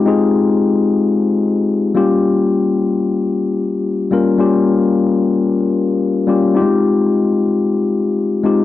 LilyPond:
\new Staff \with { instrumentName = "Tine electric piano" } { \time 4/4 \key f \minor \tempo 4 = 111 <aes c' ees' f' aes'>4. r2 <g bes des' f' g'>8~ | <g bes des' f' g'>4 r2 r8 <g bes des' f' bes'>8 | <g bes des' f' g'>4. r2 <g bes des' f' g'>8 | <g aes c' ees' f' g'>4. r2 <aes c' ees' f' g'>8 | }